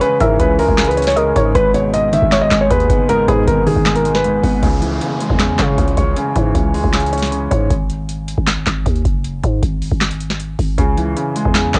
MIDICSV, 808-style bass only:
0, 0, Header, 1, 2, 480
1, 0, Start_track
1, 0, Tempo, 384615
1, 15, Time_signature, 4, 2, 24, 8
1, 14719, End_track
2, 0, Start_track
2, 0, Title_t, "808-style bass"
2, 0, Program_c, 0, 38
2, 255, Note_on_c, 0, 44, 109
2, 485, Note_off_c, 0, 44, 0
2, 494, Note_on_c, 0, 37, 105
2, 840, Note_off_c, 0, 37, 0
2, 855, Note_on_c, 0, 37, 100
2, 1661, Note_off_c, 0, 37, 0
2, 1695, Note_on_c, 0, 44, 107
2, 1926, Note_off_c, 0, 44, 0
2, 1935, Note_on_c, 0, 32, 109
2, 2741, Note_off_c, 0, 32, 0
2, 2775, Note_on_c, 0, 32, 99
2, 3120, Note_off_c, 0, 32, 0
2, 3134, Note_on_c, 0, 32, 104
2, 3365, Note_off_c, 0, 32, 0
2, 3375, Note_on_c, 0, 39, 112
2, 3605, Note_off_c, 0, 39, 0
2, 3615, Note_on_c, 0, 30, 108
2, 4076, Note_off_c, 0, 30, 0
2, 4096, Note_on_c, 0, 44, 112
2, 4326, Note_off_c, 0, 44, 0
2, 4335, Note_on_c, 0, 32, 106
2, 4680, Note_off_c, 0, 32, 0
2, 4694, Note_on_c, 0, 32, 100
2, 5501, Note_off_c, 0, 32, 0
2, 5535, Note_on_c, 0, 32, 105
2, 5765, Note_off_c, 0, 32, 0
2, 5775, Note_on_c, 0, 37, 106
2, 6236, Note_off_c, 0, 37, 0
2, 6615, Note_on_c, 0, 40, 94
2, 6960, Note_off_c, 0, 40, 0
2, 6974, Note_on_c, 0, 49, 105
2, 7205, Note_off_c, 0, 49, 0
2, 7214, Note_on_c, 0, 37, 107
2, 7445, Note_off_c, 0, 37, 0
2, 7454, Note_on_c, 0, 37, 104
2, 7685, Note_off_c, 0, 37, 0
2, 7935, Note_on_c, 0, 44, 111
2, 8166, Note_off_c, 0, 44, 0
2, 8174, Note_on_c, 0, 37, 103
2, 8520, Note_off_c, 0, 37, 0
2, 8534, Note_on_c, 0, 37, 99
2, 9341, Note_off_c, 0, 37, 0
2, 9376, Note_on_c, 0, 44, 104
2, 9606, Note_off_c, 0, 44, 0
2, 9616, Note_on_c, 0, 32, 108
2, 10422, Note_off_c, 0, 32, 0
2, 10455, Note_on_c, 0, 32, 100
2, 10800, Note_off_c, 0, 32, 0
2, 10814, Note_on_c, 0, 32, 103
2, 11045, Note_off_c, 0, 32, 0
2, 11055, Note_on_c, 0, 39, 105
2, 11285, Note_off_c, 0, 39, 0
2, 11295, Note_on_c, 0, 30, 107
2, 11756, Note_off_c, 0, 30, 0
2, 11775, Note_on_c, 0, 44, 106
2, 12005, Note_off_c, 0, 44, 0
2, 12014, Note_on_c, 0, 32, 104
2, 12360, Note_off_c, 0, 32, 0
2, 12374, Note_on_c, 0, 32, 97
2, 13181, Note_off_c, 0, 32, 0
2, 13214, Note_on_c, 0, 32, 101
2, 13445, Note_off_c, 0, 32, 0
2, 13454, Note_on_c, 0, 37, 105
2, 13915, Note_off_c, 0, 37, 0
2, 14293, Note_on_c, 0, 40, 100
2, 14640, Note_off_c, 0, 40, 0
2, 14653, Note_on_c, 0, 49, 103
2, 14719, Note_off_c, 0, 49, 0
2, 14719, End_track
0, 0, End_of_file